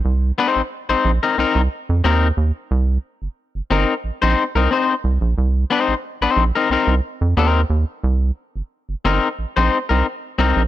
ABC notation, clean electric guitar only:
X:1
M:4/4
L:1/16
Q:1/4=90
K:Cm
V:1 name="Clean electric guitar"
z2 [CEc] z2 [CEc] z [CEB] [CEB] z3 [CEB] z3 | z6 [CEB] z2 [CEc] z [CEB] [CEc] z3 | z2 [CEc] z2 [CEc] z [CEB] [CEB] z3 [CEB] z3 | z6 [CEB] z2 [CEc] z [CEB] z2 [CEB] z |]